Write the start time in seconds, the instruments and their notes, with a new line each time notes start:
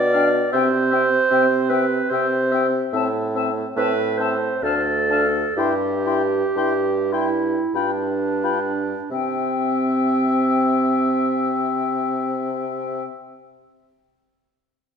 Already playing: bassoon B2, clarinet D5
0.13 french horn D4, oboe F5, flute G5
0.52 bassoon C3, french horn C4, clarinet C5, oboe E5, flute G5
0.91 french horn C4, oboe E5, flute G5
1.31 bassoon C3, french horn C4, oboe E5, flute G5
1.69 french horn C4, clarinet B4, oboe E5, flute G5
2.10 bassoon C3, french horn C4, clarinet C5, oboe E5, flute G5
2.52 french horn C4, oboe E5, flute G5
2.93 bassoon A2, french horn C4, oboe E5, flute A5
3.35 french horn C4, oboe E5, flute A5
3.76 bassoon A2, french horn C4, clarinet B4, oboe E5, flute A5
4.18 french horn C4, clarinet C5, oboe E5, flute A5
4.63 bassoon D2, french horn D4, clarinet A4, oboe F5, flute A5
5.10 french horn D4, oboe F5, flute A5
5.57 bassoon G2, french horn E4, clarinet G4, oboe G5, flute C6
6.06 french horn E4, oboe G5, flute C6
6.56 bassoon G2, french horn E4, oboe G5, flute C6
7.11 french horn E4, clarinet E4, oboe G5, flute C6
7.74 bassoon G2, clarinet D4, french horn F4, oboe G5, flute B5
8.43 french horn F4, oboe G5, flute B5
9.11 bassoon C3, french horn C4, clarinet C4, oboe E5, flute G5